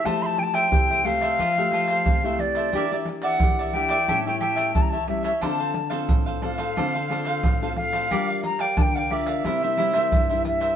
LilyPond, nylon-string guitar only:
\new Staff \with { instrumentName = "Nylon-string guitar" } { \time 4/4 \key f \major \tempo 4 = 89 << { <a e' g'>4 <a e' g'>8 <a g'>8 r16 <a g'>4 <a e' g'>8. | <bes d' g'>16 <bes d' g'>8. <bes d' g'>8 <bes d' g'>16 r16 <g cis' e'>16 <g cis' e'>8. <g cis' e'>16 r16 <g cis' e'>16 r16 | <c' f' a'>8 r16 <c' f' a'>8. <c' f' a'>16 r16 <c' f' a'>16 r16 <c' f' a'>8. <c' f' a'>8. | <d' f' bes'>8. r16 <d' f' bes'>16 r16 <d' f' bes'>8 <g bes e'>16 <g bes e'>16 <g bes e'>16 <g bes e'>8 <g bes e'>8. | } \\ { f4 c4 f4 c4 | e4 e4 a,4 e4 | d4 a,4 d4 a,4 | g4 d4 c4 g,4 | } >> }